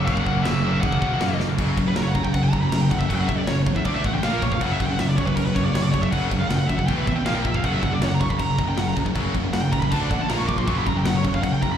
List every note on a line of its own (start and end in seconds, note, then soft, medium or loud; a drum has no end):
0.03 0.25 F#2 medium
0.03 0.10 F#3 medium
0.03 0.11 A#3 medium
0.03 0.43 F#5 loud
0.07 0.25 F#1 loud
0.07 0.25 C#3 loud
0.07 0.18 F#3 medium
0.07 kick loud
0.07 china medium
0.12 0.19 A#3 medium
0.17 0.25 F#3 medium
0.17 0.25 A#3 medium
0.17 kick medium
0.26 0.44 F#1 loud
0.26 0.43 F#2 medium
0.26 0.44 C#3 medium
0.26 0.33 F#3 medium
0.26 0.33 A#3 medium
0.26 kick loud
0.33 0.41 F#3 medium
0.33 0.41 A#3 medium
0.41 0.62 F#2 medium
0.41 0.48 F#3 medium
0.41 0.49 A#3 medium
0.41 0.81 E5 loud
0.45 0.80 F#1 loud
0.45 0.62 C#3 loud
0.45 0.56 F#3 medium
0.45 snare loud
0.45 china medium
0.49 0.55 A#3 loud
0.56 0.63 F#3 medium
0.56 0.63 A#3 medium
0.63 0.81 F#2 loud
0.63 0.82 C#3 medium
0.63 0.71 F#3 medium
0.63 0.71 A#3 medium
0.71 0.79 F#3 medium
0.71 0.80 A#3 medium
0.79 0.99 F#2 medium
0.79 0.86 F#3 medium
0.79 0.87 A#3 medium
0.79 1.35 F#5 medium
0.79 china medium
0.83 1.17 E1 medium
0.83 1.00 C#3 medium
0.83 0.94 F#3 medium
0.83 kick loud
0.87 0.94 A#3 medium
0.92 1.01 F#3 medium
0.92 1.01 A#3 medium
0.92 kick medium
1.01 1.19 F#2 medium
1.01 1.19 C#3 loud
1.01 1.09 F#3 medium
1.01 1.08 A#3 medium
1.01 kick medium
1.09 1.16 F#3 medium
1.09 1.16 A#3 medium
1.16 1.38 F#2 medium
1.16 1.24 F#3 medium
1.16 1.24 A#3 medium
1.20 1.55 F#1 loud
1.20 1.38 C#3 loud
1.20 1.32 F#3 medium
1.20 1.32 A#3 medium
1.20 snare loud
1.20 china medium
1.32 1.40 F#3 medium
1.32 1.41 A#3 medium
1.39 1.56 F#2 medium
1.39 1.57 C#3 medium
1.39 snare medium
1.58 1.74 F#1 medium
1.58 1.76 F#2 medium
1.58 1.77 C#3 medium
1.58 1.77 F#3 loud
1.58 kick loud
1.58 crash medium
1.77 1.92 F#1 medium
1.77 1.85 F#2 medium
1.77 1.85 C#3 medium
1.77 kick medium
1.77 crash medium
1.86 1.95 F#2 medium
1.86 1.95 C#3 medium
1.86 1.96 B4 medium
1.96 2.12 F#1 medium
1.96 2.13 F#2 medium
1.96 2.14 C#3 medium
1.96 2.02 A#4 medium
1.96 snare loud
1.96 crash medium
2.02 2.09 C#5 medium
2.08 2.15 F#5 medium
2.14 2.30 F#1 medium
2.14 2.24 F#2 medium
2.14 2.24 C#3 medium
2.14 2.24 A#5 medium
2.14 kick loud
2.14 crash medium
2.24 2.33 F#2 medium
2.24 2.34 C#3 medium
2.24 2.33 G5 medium
2.24 kick medium
2.33 2.49 F#1 medium
2.33 2.51 F#2 medium
2.33 2.51 C#3 medium
2.33 2.43 F#5 medium
2.33 kick loud
2.33 crash medium
2.43 2.51 G5 medium
2.51 2.68 F#1 medium
2.51 2.61 F#2 medium
2.51 2.61 C#3 medium
2.51 2.61 A#5 medium
2.51 kick medium
2.51 crash medium
2.61 2.70 F#2 medium
2.61 2.71 C#3 medium
2.61 2.70 B5 loud
2.70 2.87 F#1 medium
2.70 2.89 F#2 medium
2.70 2.89 C#3 medium
2.70 2.80 A#5 loud
2.70 snare loud
2.70 crash medium
2.81 2.91 G5 loud
2.91 3.06 F#1 medium
2.91 3.00 F#2 medium
2.91 2.99 C#3 medium
2.91 2.99 F#5 medium
2.91 kick medium
2.91 crash medium
3.00 3.08 F#2 medium
3.00 3.09 C#3 medium
3.00 3.09 E5 medium
3.00 kick medium
3.09 3.25 F#1 loud
3.09 3.28 F#2 medium
3.09 3.28 C#3 medium
3.09 3.28 F#3 loud
3.09 3.15 F#5 medium
3.09 kick medium
3.09 crash medium
3.16 3.20 G5 loud
3.21 3.28 F#5 medium
3.27 3.44 F#1 medium
3.27 3.38 F#2 medium
3.27 3.37 C#3 medium
3.27 3.38 E5 medium
3.27 kick loud
3.27 crash medium
3.38 3.47 F#2 medium
3.38 3.47 C#3 medium
3.38 3.48 D5 medium
3.47 3.63 F#1 medium
3.47 3.65 F#2 medium
3.47 3.65 C#3 medium
3.47 3.59 C#5 loud
3.47 snare loud
3.47 crash medium
3.67 3.82 E2 medium
3.67 3.76 F#2 medium
3.67 3.75 C#3 medium
3.67 kick loud
3.67 crash medium
3.76 3.86 F#2 medium
3.76 3.85 C#3 medium
3.76 3.85 E5 medium
3.76 kick medium
3.85 4.00 D2 loud
3.85 4.03 D3 medium
3.85 4.03 A3 medium
3.85 4.04 D4 medium
3.85 3.95 D5 medium
3.85 kick loud
3.85 crash medium
3.95 4.04 E5 medium
4.04 4.19 A1 medium
4.04 4.13 D3 medium
4.04 4.13 A3 medium
4.04 4.14 F#5 medium
4.04 kick medium
4.04 crash medium
4.14 4.23 D3 medium
4.14 4.23 A3 medium
4.14 4.23 G5 loud
4.23 4.38 A#1 medium
4.23 4.41 A#2 medium
4.23 4.41 F3 medium
4.23 4.42 A#3 loud
4.23 4.33 F5 loud
4.23 snare loud
4.23 crash medium
4.33 4.42 A#4 medium
4.42 4.57 F1 medium
4.42 4.51 A#2 medium
4.42 4.51 F3 medium
4.42 4.51 C#5 loud
4.42 kick medium
4.42 crash medium
4.52 4.62 A#2 medium
4.52 4.61 F3 medium
4.52 4.61 F5 medium
4.52 kick medium
4.61 4.76 F#1 loud
4.61 4.79 F#2 medium
4.61 4.79 C#3 medium
4.61 4.80 F#3 loud
4.61 4.71 F#5 loud
4.61 kick loud
4.61 crash medium
4.71 4.80 E5 medium
4.80 4.95 F#1 loud
4.80 4.89 F#2 medium
4.80 4.89 C#3 medium
4.80 4.86 F#5 loud
4.80 kick medium
4.80 crash medium
4.86 4.98 C#3 medium
4.86 4.92 G5 loud
4.90 4.98 F#2 medium
4.90 4.99 F#5 loud
4.99 5.14 F#1 medium
4.99 5.16 F#2 medium
4.99 5.16 C#3 medium
4.99 5.08 E5 medium
4.99 snare loud
4.99 crash medium
5.09 5.17 D5 medium
5.17 5.33 F#1 loud
5.17 5.27 F#2 medium
5.17 5.26 C#3 medium
5.17 5.27 C#5 medium
5.17 kick loud
5.17 crash medium
5.26 5.36 F#2 medium
5.26 5.36 C#3 medium
5.26 5.36 B4 medium
5.26 kick medium
5.36 5.52 F#1 medium
5.36 5.54 F#2 medium
5.36 5.54 C#3 medium
5.36 5.45 A#4 medium
5.36 kick medium
5.36 crash medium
5.46 5.55 B4 medium
5.54 5.71 F#1 loud
5.54 5.65 F#2 medium
5.54 5.65 C#3 medium
5.54 5.64 C#5 medium
5.54 kick medium
5.54 crash medium
5.65 5.74 F#2 medium
5.65 5.75 C#3 medium
5.65 5.74 D5 loud
5.75 5.89 F#1 loud
5.75 5.92 F#2 medium
5.75 5.92 C#3 medium
5.75 5.83 C#5 medium
5.75 snare loud
5.75 crash medium
5.83 5.92 D5 loud
5.92 6.09 F#1 medium
5.92 6.03 F#2 medium
5.92 6.03 C#3 medium
5.92 6.02 C#5 loud
5.92 kick medium
5.92 crash medium
6.03 6.12 F#2 medium
6.03 6.13 C#3 medium
6.03 6.12 E5 medium
6.03 kick medium
6.11 6.27 F#1 medium
6.11 6.31 F#2 medium
6.11 6.31 C#3 medium
6.11 6.31 F#3 loud
6.11 6.23 F#5 loud
6.11 kick loud
6.11 crash medium
6.31 6.46 F#1 medium
6.31 6.40 F#2 medium
6.31 6.40 C#3 medium
6.31 kick medium
6.31 crash medium
6.40 6.49 F#2 medium
6.40 6.49 C#3 medium
6.40 6.48 F5 medium
6.48 6.65 F#1 loud
6.48 6.67 F#2 medium
6.48 6.67 C#3 medium
6.48 6.55 F#5 loud
6.48 snare loud
6.48 crash medium
6.55 6.60 G5 loud
6.60 6.67 F#5 medium
6.67 6.85 D2 medium
6.67 6.78 F#2 medium
6.67 6.77 C#3 medium
6.67 6.77 E5 medium
6.67 kick medium
6.67 crash medium
6.77 6.88 F#2 medium
6.77 6.88 C#3 medium
6.77 6.87 F#5 loud
6.77 kick medium
6.87 7.03 E1 medium
6.87 7.06 E2 loud
6.87 7.05 B2 medium
6.87 7.06 E3 loud
6.87 6.97 G5 loud
6.87 kick loud
6.87 crash medium
6.96 7.06 B4 medium
7.07 7.22 A1 medium
7.07 7.16 E2 medium
7.07 7.15 B2 medium
7.07 7.16 E5 medium
7.07 kick medium
7.07 crash medium
7.16 7.26 E2 medium
7.16 7.25 B2 medium
7.16 7.25 G5 loud
7.26 7.41 A#1 medium
7.26 7.44 A#2 medium
7.26 7.44 F3 loud
7.26 7.44 A#3 loud
7.26 7.35 F5 medium
7.26 snare loud
7.26 crash medium
7.35 7.44 G5 loud
7.45 7.60 F1 medium
7.45 7.53 A#2 medium
7.45 7.53 F3 medium
7.45 7.55 E5 medium
7.45 kick medium
7.45 crash medium
7.54 7.63 A#2 medium
7.54 7.64 F3 medium
7.54 7.64 F5 medium
7.54 kick medium
7.63 7.79 F#1 medium
7.63 7.81 F#2 medium
7.63 7.81 C#3 loud
7.63 7.82 F#3 medium
7.63 7.73 F#5 loud
7.63 kick loud
7.63 crash medium
7.74 7.83 E5 medium
7.82 7.98 F#1 medium
7.82 7.90 F#2 medium
7.82 7.90 C#3 medium
7.82 7.93 F#5 loud
7.82 kick medium
7.82 crash medium
7.91 8.00 F#2 medium
7.91 8.00 C#3 medium
7.91 8.02 D5 medium
8.01 8.16 F#1 medium
8.01 8.19 F#2 medium
8.01 8.18 C#3 medium
8.01 8.08 C#5 medium
8.01 snare loud
8.01 crash medium
8.08 8.14 F#5 loud
8.14 8.21 A#5 loud
8.20 8.36 F#1 medium
8.20 8.29 F#2 medium
8.20 8.28 C#3 medium
8.20 8.30 C#6 loud
8.20 kick medium
8.20 crash medium
8.30 8.38 F#2 medium
8.30 8.39 C#3 medium
8.30 8.39 B5 loud
8.30 kick medium
8.39 8.55 F#1 loud
8.39 8.57 F#2 medium
8.39 8.57 C#3 medium
8.39 8.66 A#5 medium
8.39 kick loud
8.39 crash medium
8.58 8.74 F#1 loud
8.58 8.67 F#2 medium
8.58 8.66 C#3 medium
8.58 kick medium
8.58 crash medium
8.68 8.75 F#2 medium
8.68 8.76 C#3 medium
8.68 8.78 G5 medium
8.77 8.93 F#1 medium
8.77 8.94 F#2 medium
8.77 8.95 C#3 medium
8.77 8.87 F#5 medium
8.77 snare loud
8.77 crash medium
8.88 8.93 A#5 loud
8.96 9.12 F#1 medium
8.96 9.04 F#2 medium
8.96 9.04 C#3 medium
8.96 kick medium
8.96 crash medium
9.05 9.14 F#2 medium
9.05 9.14 C#3 medium
9.05 kick medium
9.15 9.31 F#1 loud
9.15 9.32 F#2 medium
9.15 9.32 C#3 medium
9.15 9.34 F#3 loud
9.15 kick medium
9.15 crash medium
9.33 9.50 F#1 loud
9.33 9.43 F#2 medium
9.33 9.42 C#3 medium
9.33 kick medium
9.33 crash medium
9.43 9.52 F#2 medium
9.43 9.52 C#3 medium
9.53 9.68 F#1 loud
9.53 9.70 F#2 medium
9.53 9.71 C#3 medium
9.53 9.61 F#5 loud
9.53 snare loud
9.53 crash medium
9.62 9.72 G5 medium
9.71 9.88 F#1 loud
9.71 9.82 F#2 medium
9.71 9.81 C#3 medium
9.71 9.80 A#5 medium
9.71 kick loud
9.71 crash medium
9.80 9.92 F#2 medium
9.80 9.91 C#3 medium
9.80 9.90 B5 loud
9.80 kick medium
9.90 10.07 D2 loud
9.90 10.09 D3 medium
9.90 10.09 A3 medium
9.90 10.10 D4 loud
9.90 10.00 A5 loud
9.90 kick loud
9.90 crash medium
10.00 10.10 D5 medium
10.10 10.26 A1 medium
10.10 10.19 D3 medium
10.10 10.19 A3 medium
10.10 10.21 F#5 medium
10.10 kick medium
10.10 crash medium
10.20 10.28 D3 medium
10.20 10.29 A3 medium
10.20 10.30 A5 loud
10.29 10.45 A#1 loud
10.29 10.47 A#2 medium
10.29 10.47 F3 medium
10.29 10.48 A#3 loud
10.29 10.38 A#5 loud
10.29 snare loud
10.29 crash medium
10.39 10.47 C#6 loud
10.48 10.64 A#1 medium
10.48 10.57 A#2 medium
10.48 10.57 F3 medium
10.48 10.57 D6 loud
10.48 kick medium
10.48 crash medium
10.57 10.67 A#2 medium
10.57 10.67 F3 medium
10.57 10.67 C6 medium
10.57 kick medium
10.66 10.83 F#1 loud
10.66 10.85 F#2 medium
10.66 10.85 C#3 medium
10.66 10.86 F#3 loud
10.66 10.77 C#6 loud
10.66 kick loud
10.66 crash medium
10.78 10.87 B5 loud
10.86 11.02 F#1 medium
10.86 10.95 F#2 medium
10.86 10.94 C#3 medium
10.86 10.97 A#5 loud
10.86 kick medium
10.86 crash medium
10.95 11.04 F#2 medium
10.95 11.04 C#3 medium
10.95 11.07 G5 loud
11.05 11.21 F#1 loud
11.05 11.22 F#2 medium
11.05 11.23 C#3 medium
11.05 11.15 F#5 loud
11.05 snare loud
11.05 crash medium
11.16 11.21 C#5 medium
11.24 11.40 F#1 loud
11.24 11.32 F#2 medium
11.24 11.32 C#3 medium
11.24 kick medium
11.24 crash medium
11.33 11.41 F#2 medium
11.33 11.42 C#3 medium
11.33 11.42 F5 loud
11.33 kick medium
11.43 11.58 F#1 medium
11.43 11.60 F#2 medium
11.43 11.60 C#3 medium
11.43 11.52 F#5 medium
11.43 kick loud
11.43 crash medium
11.53 11.62 G5 medium
11.61 11.78 F#1 medium
11.61 11.71 F#2 medium
11.61 11.70 C#3 medium
11.61 11.72 A#5 medium
11.61 kick medium
11.61 crash medium
11.72 11.78 F#2 medium
11.72 11.78 C#3 medium
11.72 11.78 B5 loud